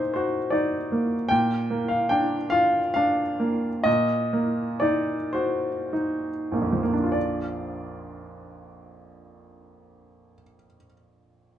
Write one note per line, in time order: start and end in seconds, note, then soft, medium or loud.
0.00 1.27 A#2 soft
0.00 0.92 A#3 soft
0.00 0.38 D#4 soft
0.00 0.12 C5 medium
0.00 1.33 D#5 medium
0.14 0.76 F#4 soft
0.14 0.52 C5 medium
0.50 1.14 D#4 soft
0.50 1.29 D5 soft
0.92 1.31 A#3 soft
1.29 3.82 A#2 soft
1.29 1.89 G5 medium
1.70 2.35 A#3 soft
1.88 2.09 F5 medium
2.09 2.79 D4 soft
2.09 2.52 G5 medium
2.50 3.22 F4 soft
2.50 2.92 F5 medium
2.94 3.67 D4 soft
2.94 3.85 F5 medium
3.40 3.85 A#3 soft
3.84 7.11 A#2 soft
3.84 4.82 D#5 medium
4.33 5.14 A#3 soft
4.80 5.69 D#4 soft
4.80 5.34 D5 medium
5.33 6.28 F#4 soft
5.33 5.91 C5 soft
5.93 6.92 D#4 soft
6.52 10.33 A#1 soft
6.52 6.82 A#3 soft
6.62 10.43 F2 soft
6.72 10.54 F3 soft
6.83 10.64 A#3 soft
6.93 10.74 D4 soft
7.04 10.85 F4 soft
7.12 10.93 D5 soft